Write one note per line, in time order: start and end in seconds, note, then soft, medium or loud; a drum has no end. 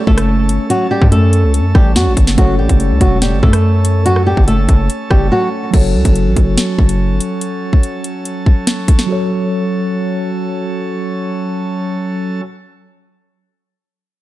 0.00 2.32 A3 medium
0.00 2.34 A3 medium
0.00 2.33 C#4 medium
0.00 5.69 C#4 medium
0.00 2.34 A4 medium
0.00 2.35 A4 medium
0.00 2.36 C#5 medium
0.07 0.51 F#1 loud
0.07 0.67 A3 medium
0.07 0.66 A4 medium
0.07 kick loud
0.18 cross-stick loud
0.18 closed hi-hat medium
0.49 0.59 G1 loud
0.49 closed hi-hat loud
0.70 0.86 F#3 medium
0.70 0.86 F#4 loud
0.70 closed hi-hat medium
0.91 1.07 G3 medium
0.91 1.07 G4 medium
1.02 1.45 F#2 loud
1.02 kick medium
1.12 1.52 A3 medium
1.12 1.51 A4 medium
1.12 closed hi-hat medium
1.33 closed hi-hat medium
1.43 1.61 C#2 loud
1.54 closed hi-hat medium
1.59 1.74 F#2 loud
1.75 1.97 A1 loud
1.75 1.91 G3 medium
1.75 1.91 G4 medium
1.75 kick loud
1.75 cross-stick medium
1.96 2.08 F#2 loud
1.96 2.12 F#3 medium
1.96 2.12 F#4 medium
1.96 snare loud
1.96 closed hi-hat medium
2.06 2.16 A1 loud
2.17 2.37 F#1 loud
2.17 kick loud
2.17 closed hi-hat loud
2.27 snare medium
2.35 2.60 F#1 loud
2.35 2.54 F#3 medium
2.35 5.68 A3 medium
2.35 5.70 A3 medium
2.35 5.69 C#4 medium
2.35 2.54 F#4 loud
2.35 5.70 A4 medium
2.35 kick loud
2.35 closed hi-hat medium
2.39 5.70 A4 medium
2.39 5.71 C#5 medium
2.59 2.69 A1 loud
2.59 2.99 G3 medium
2.59 2.98 G4 medium
2.69 2.92 F#1 loud
2.69 kick medium
2.69 closed hi-hat medium
2.80 closed hi-hat medium
2.90 3.00 C#2 loud
3.01 3.34 E1 loud
3.01 3.17 F#3 medium
3.01 3.17 F#4 medium
3.01 kick loud
3.01 closed hi-hat medium
3.22 3.38 G3 medium
3.22 3.38 G4 medium
3.22 snare loud
3.22 closed hi-hat medium
3.32 3.42 G1 loud
3.43 4.33 F#2 loud
3.43 4.02 A3 medium
3.43 4.02 A4 medium
3.43 kick loud
3.53 cross-stick loud
3.53 closed hi-hat medium
3.85 closed hi-hat loud
4.06 4.22 F#3 medium
4.06 4.21 F#4 medium
4.06 closed hi-hat medium
4.16 cross-stick medium
4.27 4.43 G3 medium
4.27 4.42 G4 medium
4.37 4.67 F#1 loud
4.37 kick medium
4.48 4.87 A3 medium
4.48 4.87 A4 medium
4.48 closed hi-hat medium
4.69 4.89 F#1 loud
4.69 kick medium
4.69 closed hi-hat medium
4.90 closed hi-hat medium
5.10 5.31 F#1 loud
5.10 5.27 G3 medium
5.10 5.26 G4 medium
5.10 kick loud
5.10 cross-stick medium
5.32 5.48 F#3 medium
5.32 5.47 F#4 medium
5.71 5.96 F#1 loud
5.71 9.04 F#3 medium
5.71 12.41 F#3 medium
5.71 12.41 C#4 medium
5.71 9.05 F#4 medium
5.71 12.41 A4 medium
5.71 kick loud
5.71 closed hi-hat medium
5.71 crash medium
5.75 9.06 A4 medium
5.75 9.07 C#5 medium
5.95 6.04 C#2 loud
6.05 6.27 F#1 loud
6.05 kick medium
6.05 closed hi-hat medium
6.16 closed hi-hat medium
6.26 6.36 A1 loud
6.36 6.57 F#1 loud
6.36 kick medium
6.36 closed hi-hat medium
6.58 snare loud
6.58 closed hi-hat medium
6.78 7.11 F#1 loud
6.78 kick loud
6.89 closed hi-hat medium
7.10 7.20 G1 loud
7.20 closed hi-hat loud
7.41 closed hi-hat medium
7.73 kick medium
7.83 closed hi-hat medium
8.04 closed hi-hat medium
8.25 closed hi-hat medium
8.46 kick medium
8.67 snare loud
8.67 closed hi-hat medium
8.88 kick loud
8.88 closed hi-hat loud
8.99 snare medium
9.06 12.39 F#3 medium
9.06 12.40 F#4 medium
9.10 12.41 A4 medium
9.10 12.42 C#5 medium